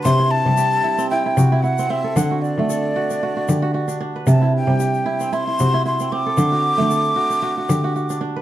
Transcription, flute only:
X:1
M:4/4
L:1/8
Q:"Swing 16ths" 1/4=114
K:Clyd
V:1 name="Flute"
c' a3 g2 f e | f d6 z | a g3 c'2 c' d'- | d'6- d' z |]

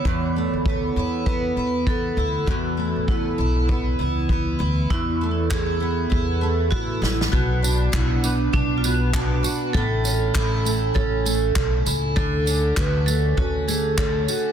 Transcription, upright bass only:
X:1
M:4/4
L:1/16
Q:"Swing 16ths" 1/4=99
K:Emix
V:1 name="Upright bass" clef=bass
E,,3 D,,3 E,,4 E,,4 D,,2 | E,,3 A,,,3 B,,,4 C,,4 D,,2 | E,,8 E,,4 A,,2 A,,,2 | B,,,4 B,,,4 B,,,6 z2 |
A,,,4 A,,,4 A,,,4 B,,,2 C,,2 | D,,4 D,,4 D,,6 z2 |]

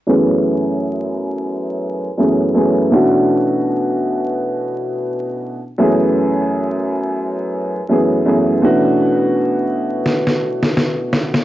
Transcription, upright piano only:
X:1
M:4/4
L:1/16
Q:"Swing 16ths" 1/4=84
K:F#m
V:1 name="Upright piano"
[F,,E,A,B,CG]8- [F,,E,A,B,CG]3 z [F,,E,A,B,CG]2 [F,,E,A,B,CG]2 | [B,,E,A,CDF]12- [B,,E,A,CDF]2 z2 | [F,,E,A,B,CG]8- [F,,E,A,B,CG]3 z [F,,E,A,B,CG]2 [F,,E,A,B,CG]2 | [B,,E,A,CDF]12- [B,,E,A,CDF]2 z2 |]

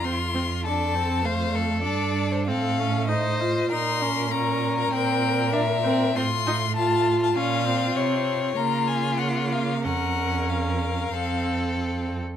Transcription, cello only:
X:1
M:4/4
L:1/8
Q:1/4=98
K:F
V:1 name="Cello" clef=bass
F,,6 G,,2 | [K:Bbm] =A,,4 B,,4 | B,,4 =A,,4 | B,,2 C,2 D,4 |
F,,4 F,,3 z |]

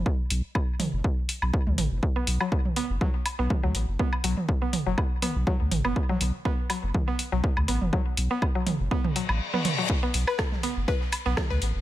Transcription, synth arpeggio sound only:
X:1
M:4/4
L:1/16
Q:"Swing 16ths" 1/4=122
K:Bm
V:1 name="Synth arpeggio sound"
z16 | z B, z F, z2 B, z F, z2 B, z F, z2 | B, z F, z2 B, z F, z2 B, z F, z2 B, | z F, z2 B, z F, z2 B, z F, z2 B, z |
F, z2 B, z F, z2 B, z F, z2 B, z F, | z B, z B z2 B, z B z2 B, z B z2 |]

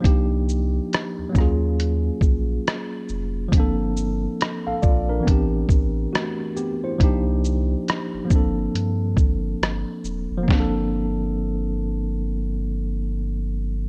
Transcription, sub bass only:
X:1
M:4/4
L:1/16
Q:"Swing 16ths" 1/4=69
K:Gm
V:1 name="Sub bass" clef=bass
C,,4 z E,, E,,4 B,,,2 z2 F,,,2 | G,,,4 z B,,, B,,,2 A,,,2 A,,,2 z4 | C,,4 z G,,, G,,,2 G,,2 G,,,2 G,,, z E,,, F,,, | G,,,16 |]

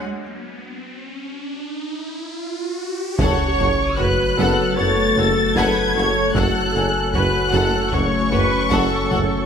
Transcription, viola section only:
X:1
M:4/4
L:1/8
Q:1/4=76
K:F#m
V:1 name="Viola section"
z8 | c2 B A c A B c | A2 B A c B A2 |]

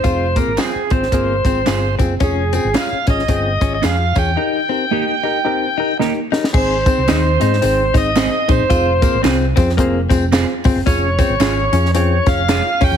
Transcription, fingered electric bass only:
X:1
M:4/4
L:1/16
Q:"Swing" 1/4=111
K:Ab
V:1 name="Fingered electric bass" clef=bass
F,,,3 A,,, z2 A,,,2 G,,,2 A,,,2 G,,,2 _G,,,2 | F,,,3 A,,, z2 A,,,2 G,,,2 A,,,2 F,,2 _F,,2 | z16 | A,,,3 C,, E,,2 A,,2 A,,,2 A,,,3 z B,,, _G,,, |
F,,,3 A,,, C,,2 F,,2 F,,,2 F,,,3 z G,,, _G,,, | F,,,3 A,,, A,,,2 F,,4 F,,,3 z F,,, _F,, |]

